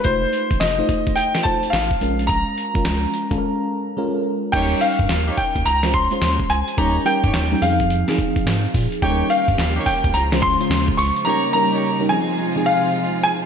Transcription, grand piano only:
X:1
M:4/4
L:1/8
Q:"Swing 16ths" 1/4=107
K:Ebmix
V:1 name="Grand piano"
c2 e2 g =a f2 | b6 z2 | g f2 g b c'2 a | b g2 f4 z |
g f2 g b c'2 d' | b b2 a2 f2 a |]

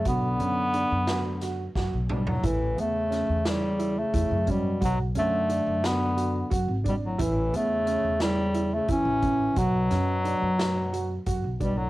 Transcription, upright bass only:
X:1
M:7/8
L:1/16
Q:1/4=88
K:Bm
V:1 name="Upright bass" clef=bass
B,,,2 F,,3 F,,4- F,, F,, B,,,3 | A,,,2 E,,3 E,,4- E,, E,, F,,3 | B,,,2 F,,3 F,,4- F,, F,, ^G,,,3 | A,,,2 E,,3 E,,4- E,, E,, A,,,3 |
B,,,2 F,,3 F,,4- F,, F,, B,,,3 |]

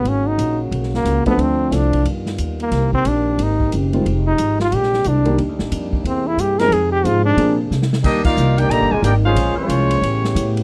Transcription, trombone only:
X:1
M:4/4
L:1/8
Q:"Swing" 1/4=181
K:Eb
V:1 name="Trombone"
_D E2 z2 B,2 _C | C2 D2 z3 B,- | B, C D2 E2 z2 | z E2 F G2 D2 |
z4 C =E G B | A G F D2 z3 | z8 | z8 |]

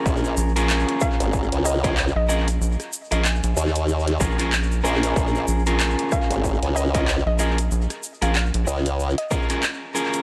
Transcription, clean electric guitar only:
X:1
M:4/4
L:1/16
Q:"Swing 16ths" 1/4=94
K:Bbm
V:1 name="Clean electric guitar"
[DFAB]3 [DFAB]8 [DFAB] z2 [DFAB] z | z3 [DFAB] z6 [DFAB] [DFAB] z2 [DFAB]2- | [DFAB]3 [DFAB]8 [DFAB] z2 [DFAB] z | z3 [DFAB] z6 [DFAB] [DFAB] z2 [DFAB]2 |]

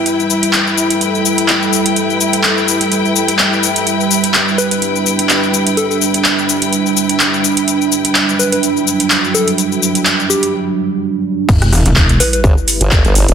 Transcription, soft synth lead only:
X:1
M:4/4
L:1/16
Q:"Swing 16ths" 1/4=126
K:Em
V:1 name="Soft synth lead"
z16 | z16 | z6 B B z8 | A A z12 z2 |
z6 B B z6 A z | z6 G2 z8 | z6 B B z8 |]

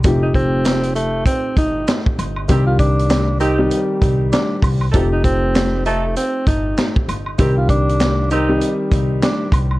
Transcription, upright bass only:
X:1
M:4/4
L:1/8
Q:"Swing 16ths" 1/4=98
K:Cdor
V:1 name="Upright bass" clef=bass
F,,,4 z G,,, z G,,, | C,,4 z C,, z C,, | F,,,4 z G,,, z G,,, | C,,4 z C,, z C,, |]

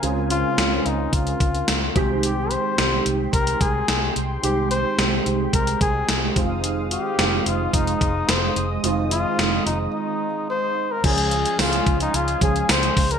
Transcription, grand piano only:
X:1
M:4/4
L:1/8
Q:1/4=109
K:Dblyd
V:1 name="Grand piano"
[D,A,CF]2 [D,A,CF]3 z2 [E,A,CG]- | [E,A,CG] z [E,A,CG]3 z3 | [E,A,CG]2 [E,A,CG]3 z2 [E,A,CF]- | [E,A,CF] z [E,A,CF]3 z3 |
[E,A,CF]2 [E,A,CF]3 z3 | [F,A,DA]2 [F,A,DA]2 z [F,A,DA]2 z |]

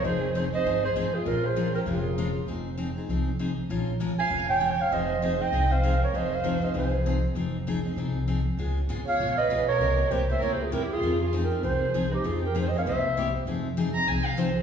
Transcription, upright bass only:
X:1
M:4/4
L:1/8
Q:"Swing" 1/4=197
K:Fm
V:1 name="Upright bass" clef=bass
F,,,4 G,,,2 A,,,2 | B,,,4 F,,,4 | F,,,4 C,,4 | B,,,4 F,,,4 |
F,,,4 C,,4 | F,,,4 C,,4 | F,,,4 C,,4 | D,,2 A,,,2 B,,,2 _C,,2 |
C,,2 C,,2 D,,2 =E,,2 | F,,4 C,,4 | F,,4 C,,4 | F,,,4 C,,4 |]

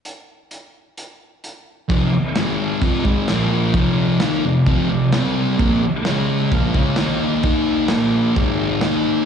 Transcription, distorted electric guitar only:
X:1
M:4/4
L:1/8
Q:1/4=130
K:Fm
V:1 name="Distorted electric guitar" clef=bass
z8 | [F,,C,F,] z [A,,E,A,]2 [F,,C,F,] [A,,E,A,] [B,,F,B,]2 | [F,,C,F,]2 [E,B,E] [F,,C,] [F,,C,F,] [F,,C,] [C,G,C]2 | [B,,F,B,] z [D,A,D]2 [B,,F,B,] [D,A,D] [E,B,E]2 |
[E,B,E]2 [B,,F,B,]2 [A,,E,A,]2 [E,B,E]2 |]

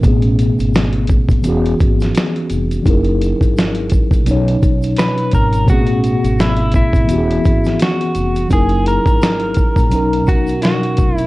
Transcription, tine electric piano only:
X:1
M:4/4
L:1/8
Q:"Swing 16ths" 1/4=85
K:B
V:1 name="Tine electric piano"
[B,,=A,B,=C^CG]4 [E,B,CFG]4 | [F,CDEGA]4 [B,,F,CDc]4 | [B,,=A,B,=C^CG]4 [E,B,CF=G^G]4 | [F,CDEGA]4 [B,,F,CDA]4 |]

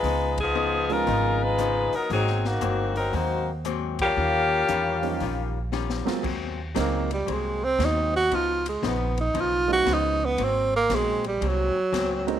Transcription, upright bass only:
X:1
M:4/4
L:1/8
Q:"Swing" 1/4=116
K:Abmix
V:1 name="Upright bass" clef=bass
D,,4 A,,,3 z | A,,,2 =G,,,2 E,,4 | E,,2 _F,,2 B,,,3 z | E,,2 D,,2 C,,2 E,,2 |
D,,2 B,,,2 _C,,2 D,,2 | A,,,2 B,,,2 C,, z D,,2 |]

